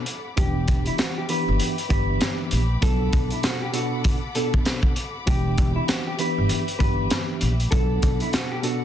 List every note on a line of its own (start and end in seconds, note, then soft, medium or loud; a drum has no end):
0.00 0.34 A4 medium
0.00 0.34 F#5 medium
0.00 0.34 B5 medium
0.00 0.34 D6 medium
0.06 closed hi-hat medium
0.36 0.87 E1 loud
0.36 1.23 E3 medium
0.36 1.23 B3 medium
0.36 1.23 D4 medium
0.36 1.24 G4 loud
0.36 2.80 G4 medium
0.36 0.84 G4 loud
0.36 2.80 E5 medium
0.36 8.84 B5 medium
0.36 8.84 D6 medium
0.36 kick loud
0.36 closed hi-hat medium
0.68 kick loud
0.68 closed hi-hat medium
0.86 0.98 E4 medium
0.86 closed hi-hat medium
0.98 1.15 F#4 medium
0.98 snare loud
0.98 closed hi-hat medium
0.98 tambourine medium
1.18 1.28 G4 medium
1.29 1.74 E3 medium
1.29 1.74 B3 medium
1.29 1.74 D4 medium
1.29 1.74 G4 loud
1.29 1.87 B4 medium
1.29 closed hi-hat medium
1.48 1.58 G1 medium
1.60 closed hi-hat medium
1.78 closed hi-hat medium
1.89 2.15 G1 medium
1.89 2.62 E3 medium
1.89 2.62 B3 medium
1.89 2.62 D4 medium
1.89 2.63 G4 loud
1.89 2.37 B4 medium
1.89 kick loud
1.89 closed hi-hat medium
2.21 snare loud
2.21 closed hi-hat loud
2.21 tambourine medium
2.51 2.77 A#1 loud
2.51 closed hi-hat medium
2.81 3.07 B1 loud
2.81 3.68 B2 medium
2.81 3.68 B3 medium
2.81 3.68 D4 medium
2.81 5.25 A4 medium
2.81 3.68 A4 loud
2.81 3.29 A4 loud
2.81 5.25 F#5 medium
2.81 kick loud
2.81 closed hi-hat medium
3.13 3.28 B1 medium
3.13 kick loud
3.13 closed hi-hat medium
3.30 3.43 E4 medium
3.30 closed hi-hat medium
3.43 3.60 F#4 medium
3.43 snare loud
3.43 closed hi-hat loud
3.43 tambourine medium
3.62 3.73 G4 medium
3.72 4.18 B2 medium
3.72 4.18 B3 medium
3.72 4.18 D4 medium
3.72 4.02 F#4 medium
3.72 4.19 A4 loud
3.72 closed hi-hat medium
4.04 kick loud
4.04 closed hi-hat medium
4.35 4.93 B2 medium
4.35 4.93 B3 medium
4.35 4.93 D4 medium
4.35 4.52 A4 medium
4.35 4.93 A4 loud
4.35 closed hi-hat medium
4.54 kick medium
4.65 snare loud
4.65 closed hi-hat loud
4.65 tambourine medium
4.83 kick medium
4.96 closed hi-hat medium
5.26 5.77 E1 loud
5.26 6.13 E3 medium
5.26 6.13 B3 medium
5.26 6.13 D4 medium
5.26 5.73 G4 loud
5.26 7.70 G4 medium
5.26 6.13 G4 loud
5.26 7.70 E5 medium
5.26 kick loud
5.26 closed hi-hat loud
5.58 kick loud
5.58 closed hi-hat medium
5.76 5.87 E4 medium
5.88 6.05 F#4 medium
5.88 snare loud
5.88 closed hi-hat loud
5.88 tambourine medium
6.07 6.18 G4 medium
6.19 6.64 E3 medium
6.19 6.64 B3 medium
6.19 6.64 D4 medium
6.19 6.64 G4 loud
6.19 6.77 B4 medium
6.19 closed hi-hat medium
6.38 6.48 G1 medium
6.49 closed hi-hat medium
6.68 closed hi-hat medium
6.78 7.05 G1 medium
6.78 7.52 E3 medium
6.78 7.52 B3 medium
6.78 7.52 D4 medium
6.78 7.52 G4 loud
6.78 7.26 B4 medium
6.78 kick loud
6.78 closed hi-hat medium
7.10 snare loud
7.10 closed hi-hat loud
7.10 tambourine medium
7.41 7.67 A#1 loud
7.41 closed hi-hat medium
7.60 closed hi-hat medium
7.71 7.97 B1 loud
7.71 8.57 B2 medium
7.71 8.58 B3 medium
7.71 8.58 D4 medium
7.71 8.18 A4 loud
7.71 8.84 A4 medium
7.71 8.58 A4 loud
7.71 8.84 F#5 medium
7.71 kick loud
7.71 closed hi-hat medium
8.02 8.18 B1 loud
8.02 kick loud
8.02 closed hi-hat medium
8.20 8.32 E4 medium
8.20 closed hi-hat medium
8.33 8.50 F#4 medium
8.33 snare loud
8.33 closed hi-hat loud
8.33 tambourine medium
8.51 8.63 G4 medium
8.62 8.84 B2 medium
8.62 8.84 B3 medium
8.62 8.84 D4 medium
8.62 8.84 F#4 medium
8.62 8.84 A4 loud
8.62 closed hi-hat medium